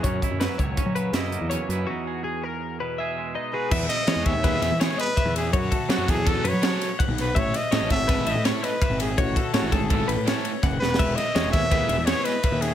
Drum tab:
CC |------------------------------|------------------------------|x-----------------------------|------------------------------|
RD |------------------------------|------------------------------|---x--x--x--x--x--x--x--x--x--|x--x--x--x--x--x--x--x--x--x--|
HH |x--x--x--x--x--x--x--x--x--x--|------------------------------|------------------------------|------------------------------|
SD |------o-----------o-----------|------------------------------|---o--o-----o--o--o--------o--|------o--o--o-----o--o-----o--|
BD |o--o-----o--o-----------------|------------------------------|o--------o--o-----------o-----|o--o-----o--o-----------o-----|

CC |------------------------------|------------------------------|x-----------------------------|
RD |x--x--x--x--x--x--x--x--x--x--|x--x--x--x--x--x--x--x--x-----|x--x--x--x--x--x--x--x--x--x--|
HH |------------------------------|------------------------------|------------------------------|
SD |---o--o--o--o-----o--o-----o--|------o--o--------o-----o--o-o|---o--o--o--o-----o--o-----o--|
BD |o--------o--o-----------o-----|o--o-----o--o-----------o-----|o--------o--o-----------o-----|